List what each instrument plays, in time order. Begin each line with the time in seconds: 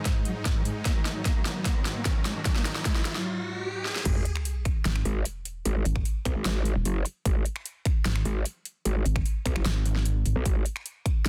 Already playing: supersaw synth G#2 G#3 D#4, riser
0.05 cello G#2, kick, snare, closed hi-hat
0.16 cello G#2
0.25 cello F#3, closed hi-hat
0.36 cello G#2
0.45 cello G#2, kick, snare, closed hi-hat
0.56 cello D#3
0.65 cello G#2, closed hi-hat
0.76 cello G#2
0.85 supersaw synth F#3, cello A#3, kick, snare, closed hi-hat
0.96 cello D#3
1.05 cello D#3, snare, closed hi-hat
1.16 cello D#3
1.25 cello A#3, kick, snare, closed hi-hat
1.36 cello D#3
1.45 cello D#3, snare, closed hi-hat
1.56 cello D#3
1.65 cello A#3, kick, snare, closed hi-hat
1.76 cello D#3
1.85 cello D#3, snare, closed hi-hat
1.96 cello A#3
2.05 cello D#3, kick, snare, closed hi-hat
2.16 cello D#3
2.25 cello G#3, snare, closed hi-hat
2.36 cello D#3
2.45 cello D#3, kick, snare, closed hi-hat
2.56 cello A#3, snare
2.65 cello D#3, snare, closed hi-hat
2.75 cello D#3, snare
2.85 cello G#3, kick, snare, closed hi-hat
2.96 cello D#3, snare
3.05 cello D#3, snare, closed hi-hat
3.15 cello F#3, snare
3.85 snare
3.96 snare
4.05 wobble bass G#1, kick, closed hi-hat, crash, sub drop
4.25 closed hi-hat
4.36 finger snap
4.45 closed hi-hat
4.65 finger snap, kick, closed hi-hat
4.85 wobble bass G#1, snare, closed hi-hat
4.96 finger snap
5.05 wobble bass G#1, closed hi-hat
5.25 closed hi-hat
5.45 closed hi-hat
5.65 wobble bass G#1, closed hi-hat
5.85 wobble bass G#1, closed hi-hat
5.96 finger snap, kick
6.05 closed hi-hat
6.25 wobble bass B1, finger snap, kick, closed hi-hat
6.36 wobble bass G#1
6.45 snare, closed hi-hat
6.65 closed hi-hat
6.76 wobble bass D#1
6.85 wobble bass F#1, closed hi-hat
7.05 closed hi-hat
7.25 wobble bass G#1, kick, closed hi-hat
7.46 closed hi-hat
7.56 finger snap
7.66 closed hi-hat
7.85 finger snap, kick, closed hi-hat
8.05 wobble bass G#1, snare, closed hi-hat
8.16 finger snap
8.25 wobble bass G#1, closed hi-hat
8.46 closed hi-hat
8.65 closed hi-hat
8.85 wobble bass G#1, closed hi-hat
9.05 wobble bass G#1, closed hi-hat
9.16 finger snap, kick
9.26 closed hi-hat
9.46 wobble bass B1, finger snap, kick, closed hi-hat
9.56 wobble bass F#1, finger snap
9.66 wobble bass G#1, snare, closed hi-hat
9.86 closed hi-hat
9.96 snare
10.06 closed hi-hat
10.26 wobble bass G#1, closed hi-hat
10.36 wobble bass B1
10.46 wobble bass G#1, kick, closed hi-hat
10.66 closed hi-hat
10.76 finger snap
10.86 closed hi-hat
11.06 finger snap, kick, closed hi-hat
11.26 wobble bass G#1, snare, closed hi-hat